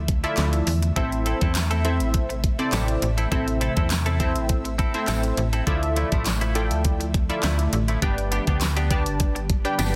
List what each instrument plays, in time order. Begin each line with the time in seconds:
Already playing: fm bass D2, ambient pad D3 F3 A3 E5
0.08 kick, closed hi-hat
0.24 analog polysynth E4 F4 A4 D5 E5, muted clean electric guitar stroke, closed hi-hat
0.37 fm bass D2, muted clean electric guitar stroke, snare, clap, closed hi-hat
0.53 muted clean electric guitar stroke, closed hi-hat
0.67 fm bass E2, open hi-hat
0.82 muted clean electric guitar stroke, closed hi-hat
0.96 fm bass A1, ambient pad C3 E3, clean electric guitar C4 E4 A4, analog polysynth C4 E4 A4 C5 E5, kick, closed hi-hat
1.12 muted clean electric guitar stroke, closed hi-hat
1.26 clean electric guitar C4 E4 A4, closed hi-hat
1.41 fm bass E2, clean electric guitar C4 E4 A4, kick, closed hi-hat
1.55 muted clean electric guitar stroke, snare, clap, closed hi-hat, tambourine
1.71 clean electric guitar C4 E4 A4, closed hi-hat
1.84 clean electric guitar C4 E4 A4, analog polysynth C4 E4 A4 C5 E5, closed hi-hat
2.00 fm bass A1, closed hi-hat
2.14 muted clean electric guitar stroke, kick, closed hi-hat
2.29 muted clean electric guitar stroke, closed hi-hat
2.44 kick, closed hi-hat
2.59 analog polysynth C4 E4 A4 C5 D5, muted clean electric guitar stroke, closed hi-hat
2.73 fm bass A1, clean electric guitar C4 E4 A4, snare, clap, closed hi-hat, tambourine
2.88 muted clean electric guitar stroke, closed hi-hat
3.02 fm bass A1, muted clean electric guitar stroke, closed hi-hat
3.18 clean electric guitar C4 E4 A4, closed hi-hat
3.31 fm bass A1, clean electric guitar C4 E4 A4, analog polysynth C4 E4 A4 C5 E5, kick, closed hi-hat
3.47 muted clean electric guitar stroke, closed hi-hat
3.61 clean electric guitar C4 E4 A4, closed hi-hat
3.76 fm bass E2, clean electric guitar C4 E4 A4, kick, closed hi-hat
3.90 snare, clap, closed hi-hat, tambourine
4.06 clean electric guitar C4 E4 A4, closed hi-hat
4.20 clean electric guitar C4 E4 A4, analog polysynth C4 E4 A4 C5 E5, kick, closed hi-hat
4.35 fm bass A1, muted clean electric guitar stroke, closed hi-hat
4.49 muted clean electric guitar stroke, kick, closed hi-hat
4.65 muted clean electric guitar stroke, closed hi-hat
4.78 clean electric guitar C4 E4 A4, kick, closed hi-hat
4.94 analog polysynth C4 E4 A4 C5 E5, muted clean electric guitar stroke, closed hi-hat
5.08 fm bass A1, clean electric guitar C4 E4 A4, snare, clap, closed hi-hat, tambourine
5.23 muted clean electric guitar stroke, closed hi-hat
5.37 fm bass A1, muted clean electric guitar stroke, closed hi-hat
5.53 clean electric guitar C4 E4 A4, closed hi-hat
5.67 fm bass D2, ambient pad D3 F3 A3, clean electric guitar F3 A3 E4, analog polysynth E4 F4 A4 D5 E5, kick, closed hi-hat
5.82 muted clean electric guitar stroke, closed hi-hat
5.96 clean electric guitar F3 A3 E4, closed hi-hat
6.12 fm bass A1, clean electric guitar F3 A3 E4, kick, closed hi-hat
6.26 muted clean electric guitar stroke, snare, clap, closed hi-hat, tambourine
6.41 clean electric guitar F3 A3 E4, closed hi-hat
6.55 clean electric guitar F3 A3 E4, analog polysynth E4 F4 A4 D5 G5, closed hi-hat
6.71 fm bass D2, muted clean electric guitar stroke, closed hi-hat
6.84 muted clean electric guitar stroke, kick, closed hi-hat
7.00 muted clean electric guitar stroke, closed hi-hat
7.14 kick, closed hi-hat
7.29 analog polysynth E4 F4 A4 D5 E5, muted clean electric guitar stroke, closed hi-hat
7.43 fm bass D2, clean electric guitar F3 A3 E4, snare, clap, closed hi-hat, tambourine
7.59 muted clean electric guitar stroke, closed hi-hat
7.73 fm bass A1, muted clean electric guitar stroke, closed hi-hat
7.88 clean electric guitar F3 A3 E4, closed hi-hat
8.02 fm bass G1, ambient pad G3 B3 G4, clean electric guitar B3 D4 G4, analog polysynth D4 G4 B4 D5 G5, kick, closed hi-hat
8.18 muted clean electric guitar stroke, closed hi-hat
8.31 clean electric guitar B3 D4 G4, closed hi-hat
8.47 fm bass D2, clean electric guitar B3 D4 G4, kick, closed hi-hat
8.61 muted clean electric guitar stroke, snare, clap, closed hi-hat, tambourine
8.77 clean electric guitar B3 D4 G4, closed hi-hat
8.90 clean electric guitar B3 D4 G4, analog polysynth D4 G4 B4 D5 A5, kick, closed hi-hat
9.06 fm bass G1, closed hi-hat
9.20 muted clean electric guitar stroke, kick, closed hi-hat
9.35 muted clean electric guitar stroke, closed hi-hat
9.50 kick, closed hi-hat
9.65 analog polysynth D4 G4 B4 D5 G5, muted clean electric guitar stroke, closed hi-hat
9.78 fm bass G1, clean electric guitar B3 D4 G4, snare, closed hi-hat, tambourine
9.87 snare